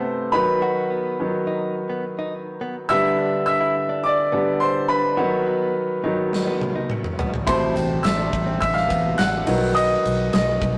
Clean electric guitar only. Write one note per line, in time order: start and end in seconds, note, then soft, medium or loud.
0.33 0.47 D#4 medium
0.62 0.89 F#4 loud
0.90 1.17 B3 medium
1.47 1.74 D#4 medium
1.90 2.04 B3 medium
2.19 2.32 D#4 medium
2.61 2.75 B3 medium
2.90 3.17 E4 loud
3.18 3.46 D4 medium
3.60 3.75 E4 medium
3.89 4.03 D4 medium
4.32 4.60 B3 medium
4.89 5.03 D4 medium
5.17 5.45 F#4 medium
5.46 5.74 B3 medium
6.04 6.31 D#4 medium
6.47 6.61 B3 medium
6.75 6.89 D#4 medium
7.19 7.33 B3 medium
7.47 7.74 E4 medium
7.75 8.03 C4 medium
8.18 8.32 D4 medium
8.46 8.60 C4 medium
8.89 9.17 B3 medium
9.47 9.61 D#4 medium